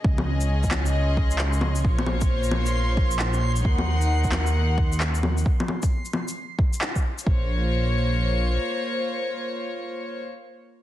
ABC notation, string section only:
X:1
M:4/4
L:1/8
Q:"Swing 16ths" 1/4=133
K:Bbm
V:1 name="String section"
[D,DAe]8 | [B,Fcd]8 | [E,EBg]8 | z8 |
[B,Fcd]8- | [B,Fcd]8 |]